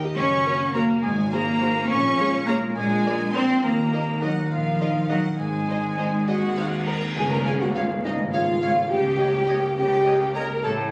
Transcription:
Already playing: harp D#3 A#3 D#4 A#4 D#5
0.03 viola section G4, violin section D#5
0.17 double bass section F#1, harp F#2, cello section C#4, french horn section F#4 A#4, oboe C#5, violin section C#6, flute C#6
0.46 harp A#3, viola section F#4 A#4, violin section C#5
0.74 cello section A#3, harp C#4 F#4, viola section F#4 A#4, oboe A#4, violin section C#5 A#5, flute A#5
1.03 double bass section G#1, harp G#2, cello section G#3, oboe G#4, french horn section C5, flute G#5, violin section G#5
1.31 cello section A#3, harp A#3, viola section F#4 G#4, oboe A#4, violin section C5 A#5, flute A#5
1.61 harp C4 F#4, viola section F#4 G#4, violin section C5
1.89 double bass section A#1, harp A#2, cello section C#4, french horn section F4 G#4, oboe C#5, flute C#6, violin section C#6
2.19 harp G#3, viola section F4 G#4, violin section C#5
2.47 cello section A#3, harp C#4 F4, viola section F4 G#4, oboe A#4, violin section C#5 A#5, flute A#5
2.69 cello section A#3
2.75 double bass section A#1, harp A#2, cello section G#3, french horn section D4 A#4, oboe G#4, flute G#5, violin section G#5
3.05 harp A#3, viola section F4 A#4, violin section D5
3.33 cello section C4, harp D4 F4, viola section F4 A#4, oboe C5, violin section D5 C6, flute C6
3.62 double bass section D#2, harp D#3, cello section A#3, french horn section D#4, oboe A#4, violin section A#5, flute A#5
3.92 harp A#3, viola section D#4 A#4, violin section D#5
4.21 cello section F#3, viola section D#4 A#4, harp D#4, oboe F#4, violin section D#5 F#5, flute F#5
4.50 double bass section A#1, cello section F3, oboe F4, harp A#4, violin section F5, flute F5
4.80 viola section D#4 A#4, harp D#5, violin section D#5
5.09 cello section F#3, viola section D#4 A#4, oboe F#4, harp A#4, violin section D#5 F#5, flute F#5
5.39 double bass section G#1, harp G#2, cello section G#3, oboe G#4, french horn section C5, violin section G#5, flute G#5
5.68 harp D#3, viola section D#4 C5, violin section D#5
5.98 harp C4, viola section D#4 C5, violin section D#5
6.27 double bass section D#2, viola section F#4, french horn section F#4, harp G#4, violin section D#5 F#5, flute F#5
6.57 viola section D#4 C5, harp C5, violin section F5
6.86 viola section D#4 A#4 C5, harp G#4, french horn section A#4, violin section F#5 A#5, flute A#5
7.16 double bass section C#2, harp C#3, cello section C#3, french horn section G#4, viola section G#4, violin section G#5, flute G#5, tam-tam
7.31 viola section A#4, french horn section A#4, violin section A#5, flute A#5
7.45 harp C#4, viola section G#4, french horn section G#4, oboe C#5, clarinet C#5, violin section F5 G#5, flute G#5
7.61 viola section F#4, french horn section F#4, flute F#5, violin section F#5
7.74 viola section F4, french horn section F4, harp G#4, oboe C#5, clarinet C#5, violin section F5, flute F5
8.04 double bass section G#1, cello section G#2, viola section D#4, french horn section D#4, flute D#5, violin section D#5, harp F5
8.32 viola section F4, french horn section F4, harp G#4, clarinet C#5, oboe C#5, flute F5, violin section F5
8.62 harp C#4, clarinet C#5, oboe C#5, violin section F5
8.91 double bass section C#2, cello section C#3, harp C#3, viola section G4, french horn section G4, flute G5, violin section G5
9.19 harp A#3, clarinet C#5, violin section D#5, oboe D#5
9.47 harp A#4, clarinet C#5, violin section D#5, oboe D#5
9.77 double bass section C#2, cello section C#3, viola section G4, french horn section G4, harp D#5, flute G5, violin section G5
10.06 harp A#4, clarinet C#5, violin section D#5, oboe D#5
10.34 harp A#3, viola section A#4, french horn section A#4, clarinet C#5, violin section D#5 A#5, oboe D#5, flute A#5
10.63 double bass section A1, cello section A2, harp A2, viola section A4, french horn section A4, clarinet C#5, oboe G5, flute A5, violin section A5

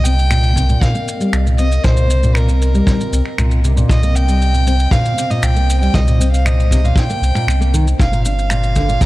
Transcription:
Already playing: sub bass C2, ambient pad C4 A#4 D#5
0.05 nylon-string guitar C4, violin G5, shaker
0.19 shaker
0.30 nylon-string guitar A#2, finger snap, shaker
0.43 shaker
0.56 nylon-string guitar C3, kick, shaker
0.69 nylon-string guitar A#2, shaker
0.81 violin F5, kick, shaker
0.94 nylon-string guitar A#3, shaker
1.08 shaker
1.20 nylon-string guitar G3, shaker
1.33 sub bass C2, finger snap, shaker
1.46 nylon-string guitar A#2, shaker
1.58 nylon-string guitar C4, violin D#5, shaker
1.72 shaker
1.84 sub bass C2, nylon-string guitar A#2, violin C5, kick, shaker
1.97 shaker
2.10 nylon-string guitar C3, shaker
2.23 nylon-string guitar A#2, shaker
2.35 violin A#4, finger snap, shaker
2.49 nylon-string guitar A#3, shaker
2.62 shaker
2.74 nylon-string guitar G3, shaker
2.87 kick, shaker
3.00 nylon-string guitar A#2, shaker
3.12 sub bass C2, nylon-string guitar C4, shaker
3.26 finger snap
3.38 sub bass C2, nylon-string guitar A#2, finger snap, shaker
3.51 shaker
3.64 nylon-string guitar C3, shaker
3.76 nylon-string guitar A#2, shaker
3.89 sub bass C2, ambient pad C5, violin D#5, kick, shaker
4.03 nylon-string guitar A#3, shaker
4.15 violin G5, shaker
4.28 nylon-string guitar G3, shaker
4.42 shaker
4.53 nylon-string guitar A#2, shaker
4.67 nylon-string guitar C4, shaker
4.80 shaker
4.91 nylon-string guitar A#2, violin F5, kick, shaker
5.05 shaker
5.17 nylon-string guitar C3, shaker
5.30 nylon-string guitar A#2, violin D#5, shaker
5.42 sub bass C2, violin G5, finger snap, shaker
5.56 nylon-string guitar A#3, shaker
5.70 shaker
5.81 nylon-string guitar G3, violin G5, shaker
5.94 sub bass C2, violin D#5, kick, shaker
6.07 nylon-string guitar A#2, shaker
6.20 nylon-string guitar C4, shaker
6.32 violin F5, shaker
6.45 nylon-string guitar A#2, violin D#5, finger snap, shaker
6.60 shaker
6.70 nylon-string guitar C3, kick, shaker
6.84 nylon-string guitar A#2, violin F5, shaker
6.96 violin G5, kick, shaker
7.10 nylon-string guitar A#3, shaker
7.21 sub bass C2, shaker
7.35 nylon-string guitar A#2, finger snap, shaker
7.47 sub bass C2, finger snap, shaker
7.60 nylon-string guitar A#3, shaker
7.74 nylon-string guitar D#3, shaker
7.88 shaker
7.98 sub bass G1, ambient pad G3 F4 A#4, violin F5, kick, shaker
8.12 nylon-string guitar A#2, shaker
8.25 nylon-string guitar D4, violin F5, shaker
8.39 shaker
8.50 nylon-string guitar A#2, finger snap, shaker
8.63 shaker
8.76 nylon-string guitar D3, kick, shaker
8.89 nylon-string guitar A#2, shaker
9.01 violin A#5, kick, shaker

